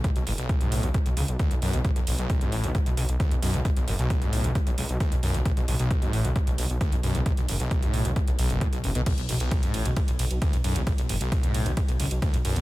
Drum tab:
CC |----------------|----------------|----------------|----------------|
RD |----------------|----------------|----------------|----------------|
HH |xxoxxxoxxxoxxxox|xxoxxxoxxxoxxxox|xxoxxxoxxxoxxxox|xxoxxxoxxxoxxxox|
BD |o---o---o---o---|o---o---o---o---|o---o---o---o---|o---o---o---o---|

CC |----------------|x---------------|----------------|
RD |----------------|xxxxxxxxxxxxxxxx|xxxxxxxxxxxxxxxx|
HH |xxoxxxoxxxoxxxox|xxoxxxoxxxoxxxox|xxoxxxoxxxoxxxox|
BD |o---o---o---o---|o---o---o---o---|o---o---o---o---|